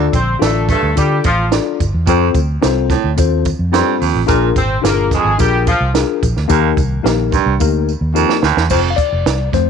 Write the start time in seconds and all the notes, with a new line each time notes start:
Already playing: D3 D4 F4 A4 D5
0.13 A#1 C4 C5, kick, closed hi-hat, tambourine
0.39 A1 A3 D4 F4 A4 D5, snare, closed hi-hat, tambourine
0.69 G2 A3 A4, kick, closed hi-hat, tambourine
0.83 D2
0.96 D3 G3 D4 F4 G4 A4 D5, kick, closed hi-hat, tambourine
1.24 A1 F3 F4, kick, closed hi-hat, tambourine
1.51 D4 F4 A4 D5, snare, closed hi-hat, tambourine
1.80 G1, kick, closed hi-hat, tambourine
1.94 E2
2.07 F2 C4 F4 A4 C5, kick, closed hi-hat, tambourine
2.35 D2, kick, closed hi-hat, tambourine
2.62 C2 C4 F4 A4 C5, snare, closed hi-hat, tambourine
2.90 A2, kick, snare, closed hi-hat, tambourine
3.04 D2
3.17 D#2 C4 F4 A4 C5, kick, closed hi-hat, tambourine
3.45 kick, closed hi-hat, tambourine
3.59 F2
3.72 G2 C4 F4 A4 C5, snare, closed hi-hat, tambourine
4.00 D#2 F2, open hi-hat, tambourine
4.15 A1
4.26 A#1 A#2 D4 F4 G#4 A#4, kick, closed hi-hat, tambourine
4.56 G#1 C4 C5, kick, closed hi-hat, tambourine
4.82 G1 A#3 D4 F4 G#4 A#4, snare, closed hi-hat, tambourine
5.11 F2 G#3 G#4, kick, snare, closed hi-hat, tambourine
5.25 G#1
5.38 A#1 G3 D4 F4 G4 G#4 A#4, kick, closed hi-hat, tambourine
5.67 F3 F4, kick, closed hi-hat, tambourine
5.81 C2
5.94 D4 F4 G#4 A#4, snare, closed hi-hat, tambourine
6.23 A#1, kick, closed hi-hat, tambourine
6.37 D2, snare
6.48 D#2 D#3 A#3 D#4 G4 A#4, kick, closed hi-hat, tambourine
6.77 C2, kick, closed hi-hat, tambourine
7.03 A#1 A#3 D#4 G4 A#4, snare, closed hi-hat, tambourine
7.32 G2, kick, closed hi-hat, tambourine
7.46 C2
7.60 D2 A#3 D#4 G4 A#4, kick, tambourine
7.89 tambourine
8.01 D#2
8.14 F2 A#3 D#4 G4 A#4, tambourine
8.29 snare
8.43 D2 D#2, snare, tambourine
8.57 E2, snare
8.70 F1 F2 C5, kick, crash, tambourine
8.90 F5
8.96 D5, kick, closed hi-hat, tambourine
9.12 F1
9.26 C2, snare, closed hi-hat, tambourine
9.52 F2 F3 A3 C4 C5, kick, snare, closed hi-hat, tambourine